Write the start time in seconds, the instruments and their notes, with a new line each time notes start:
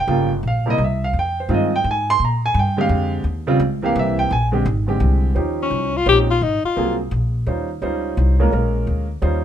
0.00 grand piano G5
0.07 upright bass G1, grand piano C#3 G3 A#3 F4
0.43 upright bass A#1
0.48 grand piano F5
0.66 grand piano C3 G3 A#3 E4
0.70 grand piano D#5
0.78 upright bass C2
0.84 grand piano E5
1.04 grand piano F5
1.13 upright bass F2
1.19 grand piano G5
1.40 grand piano C5
1.49 upright bass G2, grand piano D#3 G#3 C4 F4
1.54 grand piano D#5
1.76 grand piano G5
1.84 upright bass G#2
1.91 grand piano G#5
2.10 grand piano C6
2.20 upright bass A#2
2.25 grand piano A#5
2.46 grand piano G#5
2.54 upright bass G2
2.59 grand piano G5
2.77 grand piano D3 G#3 C4 G4
2.81 grand piano F5
2.89 upright bass F2
3.24 upright bass D#2
3.47 grand piano C#3 G3 C4 F4
3.60 upright bass C#2
3.82 grand piano E3 A#3 C4 G4 F5
3.95 upright bass C2, grand piano E5
4.19 grand piano G5
4.31 upright bass A#1, grand piano G#5
4.52 grand piano D3 G#3 C4 G4
4.65 upright bass G#1
4.87 grand piano D3 G#3 C4 G4
5.00 upright bass C2
5.35 upright bass D#2, grand piano F3 C#4 D#4 G4 C5
5.62 alto saxophone C#4
5.70 upright bass C2
5.96 alto saxophone F4
6.06 upright bass A#1, grand piano F3 C4 C#4 D#4 G4, alto saxophone G4
6.30 alto saxophone F4
6.42 upright bass G#1, alto saxophone D#4
6.64 alto saxophone F4, muted upright bass stroke
6.76 upright bass C2, grand piano F#3 A#3 C4 F4 G#4
7.11 upright bass A#1
7.46 upright bass D#2, grand piano G3 C#4 D#4 F4 C5
7.82 upright bass C#2, grand piano G3 C#4 D#4 F4 C5
8.17 upright bass C2
8.40 grand piano G#3 A#3 C#4 F4 A#4
8.52 upright bass A#1, grand piano G#3 A#3 C#4 F4 A#4
8.87 upright bass D2
9.22 upright bass D#2, grand piano G3 C#4 D#4 F4 C5